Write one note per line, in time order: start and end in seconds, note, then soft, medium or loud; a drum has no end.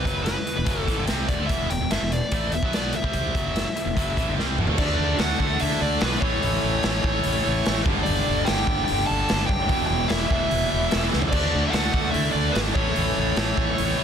0.00 0.23 B4 medium
0.05 0.34 F#1 medium
0.05 0.36 F#2 medium
0.05 0.36 C#3 medium
0.05 0.36 F#3 medium
0.05 kick loud
0.05 closed hi-hat medium
0.24 0.82 B4 medium
0.24 snare loud
0.24 closed hi-hat medium
0.47 closed hi-hat medium
0.57 0.67 E1 medium
0.57 0.66 E2 medium
0.57 0.67 B2 medium
0.66 0.87 F#1 medium
0.66 0.87 F#2 medium
0.66 0.87 C#3 loud
0.66 0.87 F#3 loud
0.66 kick loud
0.66 closed hi-hat medium
0.82 1.04 A4 medium
0.88 0.98 A1 medium
0.88 0.97 A2 medium
0.88 0.98 E3 loud
0.88 kick medium
0.88 closed hi-hat medium
0.97 1.09 G1 medium
0.97 1.07 G2 medium
0.97 1.07 D3 medium
1.07 1.29 C2 medium
1.07 1.28 C3 loud
1.07 1.29 G3 loud
1.07 1.29 C4 loud
1.07 snare loud
1.07 closed hi-hat medium
1.28 1.39 E1 medium
1.28 1.39 E2 medium
1.28 1.39 B2 medium
1.28 1.46 D5 medium
1.28 kick loud
1.28 closed hi-hat medium
1.39 1.49 D2 medium
1.39 1.49 D3 medium
1.39 1.49 A3 medium
1.47 1.69 E1 medium
1.47 1.69 E2 medium
1.47 1.70 B2 loud
1.47 1.70 E3 loud
1.47 1.69 E5 medium
1.47 kick medium
1.47 closed hi-hat medium
1.70 1.80 E1 medium
1.70 1.80 E2 medium
1.70 1.79 B2 medium
1.70 1.89 G5 medium
1.70 closed hi-hat medium
1.81 1.91 E1 medium
1.81 1.90 E2 medium
1.81 1.91 B2 medium
1.91 2.01 G1 medium
1.91 2.01 G2 medium
1.91 2.01 D3 medium
1.91 2.12 E5 medium
1.91 snare medium
1.91 closed hi-hat medium
2.02 2.21 E1 medium
2.02 2.18 E2 medium
2.02 2.18 B2 medium
2.12 2.53 D5 medium
2.12 closed hi-hat medium
2.31 2.52 A1 medium
2.31 2.53 A2 medium
2.31 2.53 E3 medium
2.31 2.53 A3 loud
2.31 kick loud
2.31 closed hi-hat medium
2.52 2.62 E1 medium
2.52 2.63 E2 medium
2.52 2.62 B2 medium
2.52 2.74 E5 medium
2.52 closed hi-hat medium
2.63 2.92 B1 medium
2.63 2.93 B2 medium
2.63 2.94 F#3 medium
2.63 2.94 B3 medium
2.63 kick loud
2.73 2.95 D5 medium
2.73 snare loud
2.73 closed hi-hat medium
2.93 4.35 E5 medium
2.93 muted fingered electric bass stroke soft
2.93 muted distorted electric guitar stroke medium
2.93 closed hi-hat medium
3.04 3.33 C2 medium
3.04 3.35 C3 medium
3.04 3.35 G3 medium
3.04 3.35 C4 loud
3.04 kick medium
3.13 kick medium
3.13 closed hi-hat medium
3.35 3.64 F#1 medium
3.35 3.65 F#2 medium
3.35 3.65 C#3 medium
3.35 3.66 F#3 loud
3.35 kick loud
3.35 closed hi-hat medium
3.56 snare medium
3.56 closed hi-hat medium
3.77 closed hi-hat medium
3.86 3.96 E1 medium
3.86 3.96 E2 medium
3.86 3.97 B2 medium
3.97 4.16 F#1 medium
3.97 4.17 F#2 medium
3.97 4.17 C#3 loud
3.97 4.17 F#3 loud
3.97 kick loud
3.97 closed hi-hat medium
4.17 4.27 A1 medium
4.17 4.27 A2 medium
4.17 4.28 E3 loud
4.17 kick medium
4.17 closed hi-hat medium
4.28 4.37 G1 medium
4.28 4.37 G2 medium
4.28 4.37 D3 medium
4.37 4.57 C2 medium
4.37 4.57 C3 medium
4.37 4.58 G3 loud
4.37 4.58 C4 loud
4.37 snare medium
4.58 4.67 E1 medium
4.58 4.68 E2 medium
4.58 4.68 B2 medium
4.58 mid tom medium
4.67 4.78 D2 medium
4.67 4.77 D3 medium
4.67 4.79 A3 medium
4.67 floor tom medium
4.78 4.93 D2 medium
4.78 5.39 D3 medium
4.78 5.19 D3 loud
4.78 5.20 A3 medium
4.78 5.41 A3 loud
4.78 6.21 D4 medium
4.78 5.17 D4 medium
4.78 5.21 D4 loud
4.78 5.39 D4 loud
4.78 6.20 A4 medium
4.78 5.17 D5 medium
4.78 6.20 E5 medium
4.78 kick loud
4.78 crash loud
4.99 5.13 D2 medium
5.19 5.33 D2 medium
5.19 5.39 D3 medium
5.19 5.40 A3 loud
5.19 5.41 D4 loud
5.19 5.58 F#4 medium
5.19 5.62 F#5 loud
5.19 snare loud
5.19 open hi-hat medium
5.40 5.54 D2 medium
5.40 5.60 D3 medium
5.40 6.00 D3 medium
5.40 5.61 A3 medium
5.40 6.01 A3 medium
5.40 6.00 D4 medium
5.40 5.61 D4 loud
5.40 kick medium
5.59 5.76 D2 medium
5.59 6.02 D3 loud
5.59 6.02 A3 loud
5.59 6.03 D4 loud
5.59 5.80 E4 medium
5.59 5.80 E5 medium
5.59 open hi-hat medium
5.80 5.96 D2 medium
5.80 6.00 D4 medium
5.80 6.03 D5 medium
6.00 6.16 B1 loud
6.00 6.21 D3 medium
6.00 6.22 D3 medium
6.00 6.22 A3 loud
6.00 6.22 A3 medium
6.00 6.20 B3 medium
6.00 6.23 B4 medium
6.00 snare loud
6.00 open hi-hat medium
6.04 6.22 D4 medium
6.20 6.36 A1 medium
6.20 6.82 A2 loud
6.20 6.42 A2 loud
6.20 6.83 E3 loud
6.20 6.43 E3 medium
6.20 6.43 A3 loud
6.20 7.85 A3 medium
6.20 7.81 C#4 medium
6.20 7.85 B4 medium
6.20 7.81 C#5 loud
6.20 kick loud
6.24 6.83 A3 loud
6.24 7.85 E4 medium
6.43 6.57 A1 medium
6.43 6.84 A2 loud
6.43 6.85 E3 loud
6.43 6.85 A3 loud
6.43 open hi-hat medium
6.64 6.78 A1 medium
6.83 6.99 A1 medium
6.83 7.43 A2 medium
6.83 7.05 A2 medium
6.83 7.44 E3 medium
6.83 7.06 E3 medium
6.83 7.06 A3 medium
6.83 7.44 A3 loud
6.83 snare loud
6.83 open hi-hat medium
7.04 7.18 A1 medium
7.04 7.24 A2 medium
7.04 7.24 E3 medium
7.04 7.25 A3 medium
7.04 kick medium
7.24 7.39 A1 medium
7.24 7.65 A2 loud
7.24 7.65 E3 loud
7.24 7.67 A3 loud
7.24 open hi-hat medium
7.46 7.60 A1 medium
7.46 7.86 A2 medium
7.46 7.86 E3 medium
7.46 7.85 A3 medium
7.65 7.81 A1 medium
7.65 7.85 A2 medium
7.65 7.85 E3 loud
7.65 7.86 A3 medium
7.65 snare loud
7.65 open hi-hat medium
7.86 8.00 G1 loud
7.86 8.45 G2 medium
7.86 8.05 G2 medium
7.86 8.06 D3 loud
7.86 8.47 D3 loud
7.86 9.68 G3 medium
7.86 8.07 G3 loud
7.86 8.50 G3 loud
7.86 9.68 D4 medium
7.86 9.68 A4 medium
7.86 kick loud
8.03 8.45 G2 loud
8.03 8.46 D3 medium
8.03 8.43 D4 medium
8.03 8.47 D5 loud
8.03 open hi-hat medium
8.08 8.21 G1 medium
8.08 8.47 G3 loud
8.29 8.42 G1 loud
8.44 8.66 G2 medium
8.44 9.07 G2 medium
8.44 8.67 D3 loud
8.44 8.68 G3 loud
8.44 8.83 G4 medium
8.44 8.84 G5 loud
8.44 snare loud
8.44 open hi-hat medium
8.49 8.63 G1 loud
8.49 9.08 D3 medium
8.49 9.07 G3 medium
8.67 8.82 G1 medium
8.67 8.86 G2 medium
8.67 8.87 D3 medium
8.67 8.88 G3 medium
8.67 kick medium
8.85 9.26 G2 loud
8.85 9.27 D3 loud
8.85 9.06 G4 medium
8.85 9.07 G5 loud
8.85 open hi-hat medium
8.90 9.04 G1 loud
8.90 9.27 G3 loud
9.06 9.48 G3 loud
9.06 9.45 A4 medium
9.06 9.45 A5 loud
9.10 9.24 G1 medium
9.10 9.50 G2 medium
9.10 9.49 D3 medium
9.27 9.46 G2 medium
9.27 9.47 D3 medium
9.27 9.47 G3 loud
9.27 snare loud
9.27 open hi-hat medium
9.32 9.45 G1 medium
9.45 9.67 G2 medium
9.45 9.68 D3 loud
9.45 9.68 G3 medium
9.45 9.85 G4 medium
9.45 9.86 G5 loud
9.45 kick loud
9.50 9.70 F#1 medium
9.68 9.84 E1 medium
9.68 10.07 E2 medium
9.68 10.29 E2 medium
9.68 10.08 B2 loud
9.68 10.30 B2 loud
9.68 11.31 E3 medium
9.68 10.08 E3 loud
9.68 11.31 B3 medium
9.68 11.31 F#4 medium
9.68 kick loud
9.68 open hi-hat medium
9.72 10.29 E3 loud
9.87 10.04 E1 medium
9.87 10.05 G4 medium
9.87 10.09 G5 loud
10.05 10.28 E2 medium
10.05 10.25 E4 medium
10.05 10.26 E5 loud
10.05 open hi-hat medium
10.09 10.25 E1 medium
10.09 10.29 B2 medium
10.09 10.30 E3 loud
10.09 snare loud
10.27 10.48 E2 medium
10.27 10.49 B2 medium
10.27 10.91 E3 loud
10.27 11.06 E4 medium
10.27 11.07 E5 loud
10.27 kick medium
10.31 10.45 E1 medium
10.31 10.90 E2 medium
10.31 10.91 B2 medium
10.31 10.50 E3 medium
10.50 10.65 E1 medium
10.50 10.91 E2 medium
10.50 10.91 B2 loud
10.50 10.92 E3 loud
10.50 open hi-hat medium
10.74 10.87 E1 medium
10.91 11.08 E1 medium
10.91 11.31 E2 medium
10.91 11.11 E2 medium
10.91 11.12 B2 medium
10.91 11.32 B2 medium
10.91 11.13 E3 medium
10.91 11.33 E3 medium
10.91 snare loud
10.91 open hi-hat medium
11.13 11.28 C#2 medium
11.13 11.32 E2 medium
11.13 11.31 B2 medium
11.13 11.32 E3 medium
11.13 snare medium
11.22 floor tom loud
11.29 11.47 D2 medium
11.29 11.71 D3 loud
11.29 11.93 D3 medium
11.29 11.63 D4 medium
11.29 12.74 D4 medium
11.29 12.74 A4 medium
11.29 11.62 D5 medium
11.29 12.74 E5 medium
11.29 kick loud
11.29 crash loud
11.33 11.72 A3 loud
11.33 11.95 A3 medium
11.33 11.72 D4 loud
11.33 11.92 D4 loud
11.55 11.68 D2 loud
11.67 11.74 E4 medium
11.67 12.09 F#4 medium
11.67 11.74 E5 medium
11.67 12.10 F#5 loud
11.72 11.88 D2 medium
11.72 11.91 D3 loud
11.72 11.92 A3 medium
11.72 11.92 D4 loud
11.72 snare loud
11.72 open hi-hat medium
11.92 12.08 D2 medium
11.92 12.12 D3 medium
11.92 12.12 A3 medium
11.92 12.55 A3 medium
11.92 12.13 D4 medium
11.92 12.54 D4 medium
11.92 kick medium
11.97 12.54 D3 medium
12.11 12.29 D2 loud
12.11 12.52 D3 medium
12.11 12.52 A3 loud
12.11 12.53 D4 loud
12.11 12.32 E4 medium
12.11 12.32 E5 loud
12.11 open hi-hat medium
12.32 12.49 D2 medium
12.32 12.50 D4 medium
12.32 12.55 D5 medium
12.50 12.74 D3 medium
12.50 12.74 A3 loud
12.50 12.56 B3 medium
12.50 12.58 B4 medium
12.54 12.70 G#1 medium
12.54 12.74 D3 medium
12.54 12.75 A3 medium
12.54 12.74 D4 medium
12.54 12.76 D4 medium
12.54 snare loud
12.54 open hi-hat medium
12.70 14.04 C#4 medium
12.74 12.90 A1 medium
12.74 12.93 A2 medium
12.74 13.35 A2 medium
12.74 12.94 E3 loud
12.74 13.37 E3 medium
12.74 14.04 A3 medium
12.74 12.95 A3 loud
12.74 14.04 E4 medium
12.74 14.04 B4 medium
12.74 14.04 C#5 medium
12.74 kick loud
12.79 13.38 A3 loud
12.95 13.11 A1 medium
12.95 13.35 A2 loud
12.95 13.36 E3 loud
12.95 13.36 A3 loud
12.95 open hi-hat medium
13.18 13.32 A1 loud
13.36 13.51 A1 loud
13.36 13.55 A2 medium
13.36 13.97 A2 medium
13.36 13.56 E3 medium
13.36 13.99 E3 medium
13.36 13.57 A3 loud
13.36 13.97 A3 medium
13.36 snare loud
13.36 open hi-hat medium
13.56 13.72 A1 medium
13.56 13.77 A2 medium
13.56 13.77 E3 loud
13.56 13.79 A3 medium
13.56 kick loud
13.78 13.93 A1 loud
13.78 14.04 A2 loud
13.78 14.04 E3 loud
13.78 14.04 A3 loud
13.78 open hi-hat medium
13.98 14.04 E3 medium
13.98 14.04 A3 loud